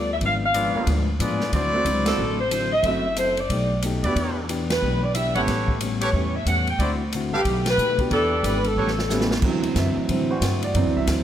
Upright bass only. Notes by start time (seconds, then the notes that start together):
Already playing: D2
0.21 G#1
0.75 muted upright bass stroke
0.87 D2
1.20 A2
1.52 D2
1.85 C#2
2.19 A1
2.83 F#1
3.49 B1
4.03 D#2
4.15 E2
4.82 B1
5.35 G#1
5.47 A1
6.13 E2
6.46 E2
6.79 D2
7.32 C2
7.45 B1
7.78 B2
8.11 E2
8.43 G#1
8.76 A1
9.42 D2
9.75 F#2
9.96 muted upright bass stroke
10.09 A2
10.41 G2
10.74 F#2
10.86 D2
10.97 C2
11.07 D2